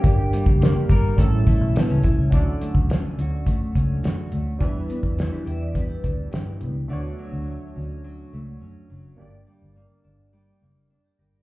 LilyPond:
<<
  \new Staff \with { instrumentName = "Clean electric guitar" } { \time 4/4 \key d \major \tempo 4 = 105 g'4. bes'8 a'4. r8 | r1 | r1 | r1 |
r1 | }
  \new Staff \with { instrumentName = "Vibraphone" } { \time 4/4 \key d \major r1 | r1 | r4 <e' g'>16 <g' b'>16 e''16 <b' d''>16 <g' b'>16 <e' g'>4. r16 | r1 |
r2. r16 g'16 <g' bes'>16 <bes' d''>16 | }
  \new Staff \with { instrumentName = "Synth keys" } { \time 4/4 \key d \major <bes d' g'>2 <g a cis' e' a'>2 | <fis cis' d' a'>1 | <g d' e' b'>1 | <a d' fis' cis''>1 |
<bes d' g' d''>1 | }
  \new Staff \with { instrumentName = "Nylon-string guitar" } { \time 4/4 \key d \major r8 g8 bes8 g8 a,8 e'8 b16 cis'16 e'8 | d8 a8 cis'8 fis'8 a8 cis'8 fis'8 a8 | e8 b8 d'8 g'8 b8 d'8 g'8 b8 | d8 fis8 a8 cis'8 fis8 a8 cis'8 fis8 |
r8 g8 bes8 d'8 g8 bes8 d'8 g8 | }
  \new Staff \with { instrumentName = "Fingered electric bass" } { \clef bass \time 4/4 \key d \major g,,8. fis,,8. g,,8 a,,16 a,16 a,,16 b,,16 r16 cis,16 b,,16 cis,16 | d,8 r16 d,8 r16 d,4 cis,8 fis,8 d,8 | e,8 r16 e,8 r16 e,4 d,8 g,8 cis,8 | d,8 r16 d,8 r16 d,4 cis,8 fis,8 fis,,8 |
g,,8 r16 g,,8 r16 g,,4 fis,,8. r16 g,,8 | }
  \new DrumStaff \with { instrumentName = "Drums" } \drummode { \time 4/4 <hh bd>8 hh16 bd16 <hh sn>8 <hh bd>8 <hh bd>8 <hh bd>8 <hh sn>8 <hh bd>8 | <hh bd>8 hh16 bd16 <hh sn>8 hh8 <hh bd>8 <hh bd>8 <hh sn>8 hh8 | <hh bd>8 hh16 bd16 <hh sn>8 hh8 <hh bd>8 <hh bd>8 <hh sn>8 hh8 | r4 r4 r4 r4 |
r4 r4 r4 r4 | }
>>